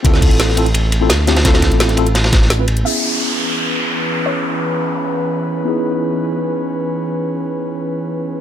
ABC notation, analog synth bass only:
X:1
M:4/4
L:1/16
Q:1/4=171
K:C#m
V:1 name="Analog synth bass" clef=bass
=D,,3 A,,,3 A,,,6 D,,4 | =D,,3 A,,,3 A,,,4 A,,,4 A,,,2 | z16 | z16 |
z16 | z16 |]